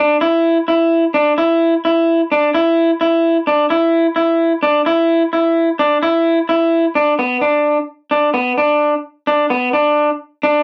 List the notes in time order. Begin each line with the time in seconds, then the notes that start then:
0.00 D4
0.21 E4
0.68 E4
1.14 D4
1.38 E4
1.85 E4
2.32 D4
2.54 E4
3.01 E4
3.47 D4
3.70 E4
4.16 E4
4.63 D4
4.86 E4
5.33 E4
5.79 D4
6.03 E4
6.49 E4
6.95 D4
7.19 B3
7.41 D4
8.11 D4
8.34 B3
8.58 D4
9.27 D4
9.50 B3
9.73 D4
10.43 D4